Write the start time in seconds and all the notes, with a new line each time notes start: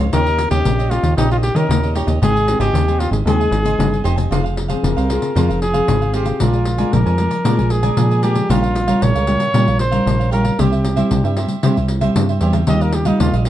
Already playing: G#2
0.00 C#2 C5 C#5 F5
0.12 D#2 D#3 A#3 C#4 D#4 G4 A#4 C#5 D#5, pandeiro
0.26 G4 C#5 D#5, pandeiro
0.38 pandeiro
0.51 D#2 A#3 C#4 G4 C#5 D#5, pandeiro
0.65 A#1 A#2, pandeiro
0.79 G4 C#5 D#5, pandeiro
0.90 A#3 C#4 D#4 F4 G4 C#5 D#5, pandeiro
1.03 D#2, pandeiro
1.17 A#1 D#3 A#3 C#4 D#4 G4 C#5 D#5, pandeiro
1.31 F4 G4 C#5 D#5, pandeiro
1.43 G4, muted cavaquinho stroke, pandeiro
1.55 D#3 A#3 C#4 G4 A#4 C#5 D#5, pandeiro
1.69 D#2 A#2, pandeiro
1.83 G4 C#5 D#5, pandeiro
1.95 A#3 C#4 D#4 G4 C#5 D#5, pandeiro
2.07 D#2 G4 C#5 D#5, pandeiro
2.22 G#1 G#3 C4 D#4 G4 G#4 C5 D#5 G#5, pandeiro
2.36 C5 D#5 G#5, pandeiro
2.48 C4 D#4 G4, muted cavaquinho stroke, pandeiro
2.59 G#1 G4 C5 D#5 G#5, pandeiro
2.74 D#2 D#3, pandeiro
2.88 C4 D#4 G4 C5 D#5 G#5, pandeiro
2.99 F4 G4 C5 D#5 G#5, pandeiro
3.11 G#1 G#4, pandeiro
3.26 D#2 G#3 C4 D#4 G4 G#4 C5 D#5 G#5, pandeiro
3.40 C5 D#5 G#5, pandeiro
3.51 G#1, muted cavaquinho stroke, pandeiro
3.65 C4 D#4 C5 D#5 G#5, pandeiro
3.79 G1 D#3, pandeiro
3.93 C5 D#5 G#5, pandeiro
4.04 F1 C4 D#4 G4 C5 D#5 G#5, pandeiro
4.16 C5 D#5 G#5, pandeiro
4.31 F1 F3 C4 F4 G#4 C5 F5, pandeiro
4.44 G#4 C5 F5, pandeiro
4.56 muted cavaquinho stroke, pandeiro
4.68 C4 F4 G#4 C5 F5, pandeiro
4.83 F1 C3 A#4, pandeiro
4.97 C2 G#4 C5 F5, pandeiro
5.08 C4 F4 G#4 C5 F5, pandeiro
5.22 pandeiro
5.35 F2 F3 C4 F4 G#4 C5 F5, pandeiro
5.49 F1 G#4 C5 F5, pandeiro
5.62 G#4, muted cavaquinho stroke, pandeiro
5.74 C4 F4 G#4 C5 F5, pandeiro
5.88 G#1, pandeiro
6.01 G#4 C5 F5, pandeiro
6.13 C4 F4 G4 G#4 C5 F5, pandeiro
6.26 G#4 C5 F5, pandeiro
6.40 A#1 A#2 G#3 D4 F4 A#4 D5 G#5, pandeiro
6.53 A#4 D5 G#5, pandeiro
6.65 muted cavaquinho stroke, pandeiro
6.78 G#3 D4 F4 A#4 D5 G#5, pandeiro
6.93 A#1 F3 A#4, pandeiro
7.06 F2 A#4 D5 G#5, pandeiro
7.18 G#3 D4 F4 A#4 D5 G#5, pandeiro
7.31 pandeiro
7.45 A#2 G#3 D4 F4 A#4 D5 G#5, pandeiro
7.58 A#1 A#4 D5 G#5, pandeiro
7.70 G#4, muted cavaquinho stroke, pandeiro
7.83 G#3 D4 F4 A#4 D5 G#5, pandeiro
7.97 A#2 F3, pandeiro
8.10 A#4 D5 G#5, pandeiro
8.22 G#3 D4 F4 G4 A#4 D5 G#5, pandeiro
8.34 D5 G#5, pandeiro
8.49 A#1 A#2 G3 C#4 F4 G4 A#4 C#5 F5, pandeiro
8.63 A#4 C#5 F5, pandeiro
8.75 muted cavaquinho stroke, pandeiro
8.87 G3 C#4 F4 A#4 C#5 F5, pandeiro
9.01 A#1 A#2 C#5, pandeiro
9.15 C#2 A#4 C#5 F5, pandeiro
9.27 G3 C#4 F4 G4 A#4 C#5 F5, pandeiro
9.40 pandeiro
9.54 A#2 G3 C#4 F4 G4 A#4 C#5 F5, pandeiro
9.68 A#1 A#4 C#5 F5, pandeiro
9.79 C5, muted cavaquinho stroke, pandeiro
9.91 G3 C#4 F4 A#4 C#5 F5, pandeiro
10.06 A#1 A#2, pandeiro
10.19 A#4 C#5 F5, pandeiro
10.31 G3 C#4 F4 G4 A#4 C#5 F5, pandeiro
10.44 A#4 C#5 F5, pandeiro
10.59 C2 C3 G3 C4 E4 G4 C5 E5, pandeiro
10.72 G4 C5 E5, pandeiro
10.84 muted cavaquinho stroke, pandeiro
10.96 G3 C4 E4 G4 C5 E5, pandeiro
11.11 C2 G3, pandeiro
11.24 G2 G4 C5 E5, pandeiro
11.36 G3 C4 E4 G4 C5 E5, pandeiro
11.48 pandeiro
11.63 C3 G3 C4 E4 G4 C5 E5, pandeiro
11.76 C2 G4 C5 E5, pandeiro
11.88 muted cavaquinho stroke, pandeiro
12.01 G3 C4 E4 G4 C5 E5, pandeiro
12.16 G2 G3, pandeiro
12.29 G4 C5 E5, pandeiro
12.41 E2 G3 C4 E4 G4 C5 E5, pandeiro
12.53 G4 C5 E5, pandeiro
12.67 D#2 D#3 G3 A#3 F4 G4 D#5 F5, pandeiro
12.81 G4 A#4 D#5 F5, pandeiro
12.93 G4, muted cavaquinho stroke, pandeiro
13.05 G3 A#3 D#4 F4 G4 D#5 F5, pandeiro
13.20 D#2 A#2 F4, pandeiro
13.33 A#1 G4 D#5 F5, pandeiro
13.45 G3 A#3 F4 G4, pandeiro